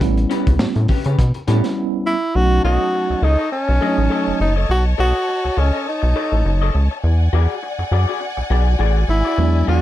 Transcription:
0.01 analog synth bass A1, tine electric piano G3 B3 C#4 E4, kick, closed hi-hat
0.17 closed hi-hat
0.30 clean electric guitar C#4 G4 B4, closed hi-hat
0.47 analog synth bass C#2, kick, closed hi-hat
0.59 analog synth bass A2, muted clean electric guitar stroke, snare
0.75 analog synth bass A2, muted clean electric guitar stroke, closed hi-hat
0.88 clean electric guitar C#4 G4 B4, kick, open hi-hat
1.04 analog synth bass C#3, clean electric guitar C#4 G4 B4, closed hi-hat
1.19 analog synth bass B2, muted clean electric guitar stroke, kick, closed hi-hat
1.34 muted clean electric guitar stroke, closed hi-hat
1.47 analog synth bass A2, tine electric piano G3 B3 C#4 E4, clean electric guitar C#4 G4 B4, closed hi-hat
1.64 muted clean electric guitar stroke, snare, closed hi-hat
2.06 tenor saxophone E4
2.35 analog synth bass B1, tine electric piano F#3 A3 C#4 D#4, tenor saxophone F#4, string section C#5 D#5 A5
2.64 analog synth bass B1, tenor saxophone F#4, clean electric guitar A4 C#5 D#5
2.95 muted clean electric guitar stroke
3.10 analog synth bass C#2, muted clean electric guitar stroke
3.22 analog synth bass C#2, tenor saxophone D#4, clean electric guitar A4 C#5 D#5
3.39 clean electric guitar A4 C#5 D#5
3.52 tenor saxophone C#4, muted clean electric guitar stroke
3.68 analog synth bass B1, muted clean electric guitar stroke
3.81 tine electric piano F#3 A3 C#4 D4, clean electric guitar A4 C#5 D#5
3.89 tine electric piano D#4
3.97 analog synth bass A1, muted clean electric guitar stroke
4.10 clean electric guitar A4 C#5 D#5
4.28 analog synth bass F#1
4.40 analog synth bass F#1, tenor saxophone D#4, muted clean electric guitar stroke
4.56 clean electric guitar A4 C#5 D#5
4.69 analog synth bass B1, tenor saxophone F#4
4.98 analog synth bass B1, tenor saxophone F#4, clean electric guitar A4 C#5 D#5
5.29 muted clean electric guitar stroke
5.44 analog synth bass C#2, muted clean electric guitar stroke
5.57 analog synth bass C#2, tenor saxophone C#4, clean electric guitar A4 C#5 D#5
5.73 clean electric guitar A4 C#5 D#5
5.86 tenor saxophone D#4, muted clean electric guitar stroke
6.02 analog synth bass B1, muted clean electric guitar stroke
6.16 clean electric guitar A4 C#5 D#5
6.32 analog synth bass A1, muted clean electric guitar stroke
6.45 analog synth bass F#1, muted clean electric guitar stroke
6.62 clean electric guitar A4 C#5 D#5
6.75 analog synth bass C#2, muted clean electric guitar stroke
6.91 muted clean electric guitar stroke
7.04 analog synth bass E2, string section D5 F#5 G#5
7.33 analog synth bass E2, clean electric guitar F#4 G#4 D5
7.63 muted clean electric guitar stroke
7.79 analog synth bass F#2, muted clean electric guitar stroke
7.92 analog synth bass F#2, clean electric guitar F#4 G#4 D5
8.08 clean electric guitar F#4 G#4 D5
8.20 muted clean electric guitar stroke
8.37 analog synth bass B1, muted clean electric guitar stroke
8.50 analog synth bass B1, clean electric guitar F#4 G#4 D5
8.66 muted clean electric guitar stroke
8.79 analog synth bass A1, clean electric guitar F#4 G#4 D5
9.08 analog synth bass G#1, tenor saxophone E4, muted clean electric guitar stroke
9.25 clean electric guitar F#4 G#4 D5
9.38 analog synth bass E2, tine electric piano F#3 G#3 B3 D4, string section E5
9.67 analog synth bass E2, clean electric guitar F#4 G#4 D5, tenor saxophone F#4

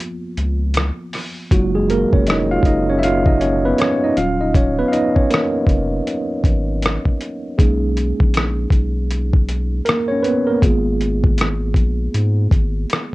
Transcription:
Already playing: tine electric piano F3 A#3 B3 F4
0.00 closed hi-hat
0.37 sub bass C#2, closed hi-hat
0.74 cross-stick, closed hi-hat
1.13 cross-stick, open hi-hat
1.51 sub bass F#1, tine electric piano F#3 G#3 A#3 D#4 F4 F#4, kick, closed hi-hat
1.75 tine electric piano G#3 G#4
1.90 tine electric piano A#3 A#4, closed hi-hat
2.13 sub bass F1, tine electric piano C#4 C#5, kick
2.27 tine electric piano D#4 D#5, cross-stick, closed hi-hat
2.51 tine electric piano F4 F5
2.63 sub bass F#1, tine electric piano D#5, kick, closed hi-hat
2.68 tine electric piano D#4
2.90 tine electric piano C#4 C#5
2.99 tine electric piano E5
3.03 tine electric piano F4 F5, closed hi-hat
3.26 tine electric piano D#4 D#5, kick
3.41 tine electric piano C#4 C#5, closed hi-hat
3.65 tine electric piano B3 B4
3.78 tine electric piano C#4 C#5, cross-stick, closed hi-hat
4.04 tine electric piano D#4 D#5
4.17 sub bass D#1, tine electric piano F#3 C#4 F4 F5, closed hi-hat
4.41 tine electric piano D#4 D#5
4.55 tine electric piano C#4 C#5, kick, closed hi-hat
4.79 tine electric piano B3 B4
4.89 tine electric piano F5
4.93 tine electric piano D#4 D#5, closed hi-hat
5.16 tine electric piano C#4 C#5, kick
5.30 tine electric piano A#3 A#4, cross-stick, closed hi-hat
5.67 sub bass F1, kick, closed hi-hat
6.07 closed hi-hat
6.44 sub bass G#1, kick, closed hi-hat
6.82 cross-stick, closed hi-hat
7.05 kick
7.21 closed hi-hat
7.58 sub bass B1, tine electric piano G#3 A#3 C#4 D#4 G#4, kick, closed hi-hat
7.97 closed hi-hat
8.20 sub bass A#1, kick
8.34 cross-stick, closed hi-hat
8.70 sub bass B1, kick, closed hi-hat
9.11 closed hi-hat
9.33 kick
9.49 closed hi-hat
9.85 tine electric piano A#3 A#4, cross-stick, closed hi-hat
10.08 tine electric piano C#4 C#5
10.23 tine electric piano B4, closed hi-hat
10.27 tine electric piano B3
10.47 tine electric piano A#3 A#4
10.62 sub bass G#1, tine electric piano G#3 A#3 B3 F4 G#4, kick, closed hi-hat
11.01 closed hi-hat
11.24 kick
11.38 cross-stick, closed hi-hat
11.74 sub bass A#1, kick, closed hi-hat
12.14 sub bass G#2, closed hi-hat
12.51 sub bass G#1, kick, closed hi-hat
12.90 cross-stick, closed hi-hat

